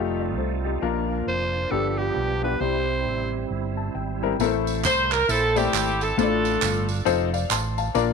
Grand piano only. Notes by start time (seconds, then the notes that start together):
Already playing: A3 D#4 F4 G4
0.20 D5
0.38 A4 C5
0.65 D#4 G4
0.82 A#2 A#3 D4 F4 A#4
1.71 G2 B3 D4 F4 G4
2.43 B3 D4 F4 G4
2.60 C3 G3 C4 E4 G4
3.77 A5
3.95 G5
4.23 G3 C4 E4 A#4 G5
4.40 A2 A3 C4 E4 A4 A#4
4.46 C5
5.56 A3 C4 E4 A4 D5
6.18 A2 A3 D4 F4 A4 C5
6.24 D5
7.05 C4 D#4 F4 A4 C5
7.34 D5 F5
7.51 A5 C6
7.78 F5 A5
7.95 A#2 A#3 D4 F4 A#4 D5